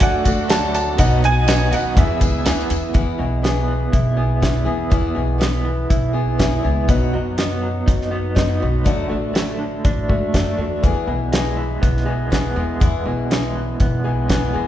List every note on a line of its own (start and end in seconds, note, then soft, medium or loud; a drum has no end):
0.00 0.22 D2 medium
0.00 0.25 F#3 medium
0.00 0.25 A3 medium
0.00 0.26 A3 medium
0.00 0.24 D4 medium
0.00 0.25 D4 medium
0.00 0.23 F#4 medium
0.00 0.98 A4 medium
0.00 0.98 D5 medium
0.00 1.95 F#5 medium
0.00 0.52 F#5 loud
0.00 0.96 D6 medium
0.00 kick loud
0.00 closed hi-hat loud
0.00 tambourine soft
0.24 0.95 D2 medium
0.24 0.49 A3 soft
0.24 0.50 D4 soft
0.24 0.50 F#4 medium
0.24 kick medium
0.24 closed hi-hat medium
0.24 tambourine medium
0.49 0.98 D3 medium
0.49 0.98 F#3 medium
0.49 0.99 A3 medium
0.49 0.99 D4 medium
0.49 0.99 F#4 medium
0.49 0.73 A5 loud
0.49 snare loud
0.49 closed hi-hat medium
0.49 tambourine medium
0.75 0.98 A5 medium
0.75 closed hi-hat medium
0.75 tambourine medium
0.98 1.69 B1 loud
0.98 1.23 B2 medium
0.98 1.24 F#3 medium
0.98 1.24 B3 medium
0.98 1.22 D#4 medium
0.98 1.20 F#4 medium
0.98 2.94 B4 medium
0.98 1.97 D#5 medium
0.98 1.22 F#5 medium
0.98 1.97 D#6 medium
0.98 kick loud
0.98 closed hi-hat medium
0.98 tambourine medium
1.22 1.47 B3 soft
1.22 1.47 D#4 soft
1.22 1.47 F#4 soft
1.22 1.70 G#5 loud
1.22 closed hi-hat medium
1.46 1.72 B2 medium
1.46 1.72 F#3 medium
1.46 1.72 B3 medium
1.46 1.71 D#4 medium
1.46 1.69 F#4 medium
1.46 snare loud
1.46 closed hi-hat medium
1.46 tambourine medium
1.70 1.95 D#2 medium
1.70 1.95 B3 soft
1.70 1.97 D#4 soft
1.70 1.96 F#4 medium
1.70 1.99 F#5 medium
1.70 closed hi-hat medium
1.70 tambourine medium
1.95 2.43 E2 medium
1.95 2.20 E2 loud
1.95 2.44 B2 medium
1.95 2.21 E3 medium
1.95 2.21 B3 medium
1.95 2.20 E4 medium
1.95 2.18 G#4 medium
1.95 2.95 E5 medium
1.95 2.67 E5 medium
1.95 2.95 G#5 medium
1.95 2.95 E6 medium
1.95 kick loud
1.95 closed hi-hat medium
2.20 2.44 C#2 medium
2.20 2.44 E3 medium
2.20 2.44 B3 soft
2.20 2.44 E4 soft
2.20 2.45 G#4 medium
2.20 kick medium
2.20 closed hi-hat medium
2.20 tambourine medium
2.44 2.68 D2 medium
2.44 2.93 E2 medium
2.44 2.93 B2 medium
2.44 2.92 E3 medium
2.44 2.93 B3 medium
2.44 2.93 E4 medium
2.44 2.94 G#4 medium
2.44 snare loud
2.44 closed hi-hat loud
2.44 tambourine loud
2.59 snare soft
2.70 2.93 E2 medium
2.70 closed hi-hat medium
2.70 tambourine medium
2.93 4.18 E2 medium
2.93 3.18 E2 medium
2.93 3.19 E3 medium
2.93 3.19 B3 medium
2.93 3.19 E4 medium
2.93 3.17 G#4 medium
2.93 kick loud
2.93 closed hi-hat medium
3.18 3.90 B1 medium
3.18 4.42 B2 medium
3.18 3.43 B3 soft
3.18 3.44 E4 soft
3.18 3.44 G#4 soft
3.42 4.17 E3 medium
3.42 4.20 B3 medium
3.42 4.17 E4 medium
3.42 4.16 G#4 medium
3.42 snare loud
3.42 closed hi-hat medium
3.68 4.92 E3 medium
3.92 4.63 B1 medium
3.92 4.41 E4 medium
3.92 kick loud
3.92 closed hi-hat medium
4.17 4.40 B3 soft
4.17 4.42 E4 medium
4.17 4.42 G#4 soft
4.40 4.66 E3 medium
4.40 4.67 B3 medium
4.40 4.65 E4 medium
4.40 4.64 G#4 medium
4.40 kick medium
4.40 snare medium
4.40 closed hi-hat medium
4.65 4.90 E2 medium
4.65 4.90 B3 soft
4.65 4.90 E4 soft
4.65 4.91 G#4 medium
4.90 6.15 E2 medium
4.90 5.14 E2 medium
4.90 5.16 E3 medium
4.90 5.16 B3 medium
4.90 5.15 E4 medium
4.90 5.13 G#4 medium
4.90 kick loud
4.90 closed hi-hat medium
5.15 5.86 B1 medium
5.15 6.39 B2 medium
5.15 5.38 B3 soft
5.15 5.39 E4 soft
5.15 5.40 G#4 medium
5.38 6.14 E3 medium
5.38 6.14 B3 medium
5.38 6.14 E4 medium
5.38 6.12 G#4 medium
5.38 snare loud
5.38 closed hi-hat medium
5.65 6.89 E3 medium
5.90 6.60 B1 medium
5.90 6.38 E4 medium
5.90 kick loud
5.90 closed hi-hat medium
6.13 6.37 B3 soft
6.13 6.39 E4 medium
6.13 6.39 G#4 medium
6.38 6.63 E3 medium
6.38 6.64 B3 medium
6.38 6.63 E4 medium
6.38 6.62 G#4 medium
6.38 kick medium
6.38 snare loud
6.38 closed hi-hat medium
6.63 6.89 C#2 medium
6.63 6.88 B3 soft
6.63 6.89 E4 soft
6.63 6.88 G#4 medium
6.88 7.12 B1 loud
6.88 7.13 B2 medium
6.88 7.14 F#3 medium
6.88 7.14 B3 medium
6.88 7.13 D#4 medium
6.88 7.12 F#4 loud
6.88 kick loud
6.88 closed hi-hat medium
7.13 7.84 F#2 medium
7.13 7.61 F#3 medium
7.13 7.37 B3 soft
7.13 7.38 D#4 soft
7.13 7.38 F#4 medium
7.37 8.12 F#3 medium
7.37 8.13 B3 medium
7.37 8.11 D#4 medium
7.37 8.10 F#4 medium
7.37 snare medium
7.37 closed hi-hat medium
7.62 8.84 F#3 medium
7.86 8.58 F#2 medium
7.86 8.34 D#4 medium
7.86 kick loud
7.86 closed hi-hat medium
8.01 snare soft
8.11 8.35 B3 soft
8.11 8.36 D#4 medium
8.11 8.36 F#4 medium
8.35 8.61 F#3 medium
8.35 8.61 B3 medium
8.35 8.61 D#4 medium
8.35 8.59 F#4 medium
8.35 kick medium
8.35 snare loud
8.35 closed hi-hat medium
8.60 8.86 B1 medium
8.60 8.85 B3 soft
8.60 8.86 D#4 soft
8.60 8.86 F#4 medium
8.84 9.09 D2 medium
8.84 9.10 D3 medium
8.84 9.10 F#3 medium
8.84 9.10 A3 medium
8.84 9.09 D4 loud
8.84 9.07 F#4 medium
8.84 kick medium
8.84 closed hi-hat medium
9.08 9.81 A1 medium
9.08 9.34 A3 soft
9.08 9.34 D4 medium
9.08 9.34 F#4 medium
9.33 10.09 F#3 medium
9.33 10.09 A3 medium
9.33 10.09 D4 medium
9.33 10.07 F#4 medium
9.33 snare loud
9.33 closed hi-hat medium
9.59 10.83 D3 medium
9.84 10.08 A1 medium
9.84 10.32 D4 medium
9.84 kick loud
9.84 closed hi-hat medium
10.08 10.32 G#2 medium
10.08 10.33 A3 soft
10.08 10.34 D4 medium
10.08 10.34 F#4 soft
10.08 kick medium
10.32 10.57 F#2 medium
10.32 10.58 F#3 medium
10.32 10.59 A3 medium
10.32 10.59 D4 medium
10.32 10.58 F#4 medium
10.32 kick medium
10.32 snare loud
10.32 closed hi-hat medium
10.58 10.83 E2 medium
10.58 10.83 A3 medium
10.58 10.84 D4 soft
10.58 10.84 F#4 medium
10.62 10.83 A3 soft
10.83 12.07 E2 medium
10.83 11.06 E2 medium
10.83 11.08 E3 medium
10.83 11.09 B3 medium
10.83 11.08 E4 medium
10.83 11.06 G#4 medium
10.83 kick loud
10.83 closed hi-hat medium
11.07 11.78 B1 medium
11.07 12.32 B2 medium
11.07 11.32 B3 soft
11.07 11.34 E4 soft
11.07 11.33 G#4 soft
11.32 12.07 E3 medium
11.32 12.05 G#3 medium
11.32 12.09 B3 medium
11.32 12.06 E4 medium
11.32 12.04 G#4 medium
11.32 snare loud
11.32 closed hi-hat medium
11.57 12.81 E3 medium
11.82 12.53 B1 medium
11.82 12.31 B3 medium
11.82 kick medium
11.82 closed hi-hat medium
11.97 snare soft
12.05 12.55 G#3 medium
12.05 12.30 B3 soft
12.05 12.31 E4 medium
12.05 12.31 G#4 medium
12.30 12.56 E3 medium
12.30 12.57 B3 medium
12.30 12.56 E4 medium
12.30 12.55 G#4 medium
12.30 kick medium
12.30 snare loud
12.30 closed hi-hat medium
12.56 12.79 E2 medium
12.56 13.29 G#3 medium
12.56 12.80 B3 medium
12.56 12.81 E4 soft
12.56 12.81 G#4 medium
12.80 14.05 E2 medium
12.80 13.05 E2 loud
12.80 13.06 E3 medium
12.80 13.06 B3 medium
12.80 13.06 E4 medium
12.80 13.04 G#4 medium
12.80 kick loud
12.80 closed hi-hat medium
13.05 13.76 B1 medium
13.05 14.30 B2 medium
13.05 13.30 B3 soft
13.05 13.31 E4 medium
13.05 13.31 G#4 soft
13.30 14.05 E3 medium
13.30 14.04 G#3 medium
13.30 14.06 B3 medium
13.30 14.04 E4 medium
13.30 14.03 G#4 medium
13.30 snare loud
13.30 closed hi-hat medium
13.56 14.68 E3 medium
13.80 14.51 B1 medium
13.80 14.29 B3 medium
13.80 kick loud
13.80 closed hi-hat medium
14.04 14.53 G#3 medium
14.04 14.28 B3 soft
14.04 14.30 E4 soft
14.04 14.30 G#4 medium
14.28 14.54 E3 medium
14.28 14.55 B3 medium
14.28 14.54 E4 medium
14.28 14.52 G#4 medium
14.28 kick medium
14.28 snare loud
14.28 closed hi-hat medium
14.53 14.68 E2 medium
14.53 14.68 G#3 medium
14.53 14.68 B3 soft
14.53 14.68 E4 medium
14.53 14.68 G#4 medium